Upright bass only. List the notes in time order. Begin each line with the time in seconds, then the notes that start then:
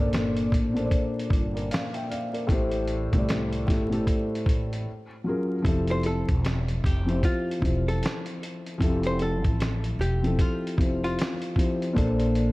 Already playing: G1
0.52 A1
1.30 G1
2.49 A1
3.13 C2
3.68 G1
4.46 A1
5.65 F1
6.29 E1
6.84 F1
7.62 E1
8.81 F1
9.45 A1
9.99 E1
10.78 F1
11.97 A#1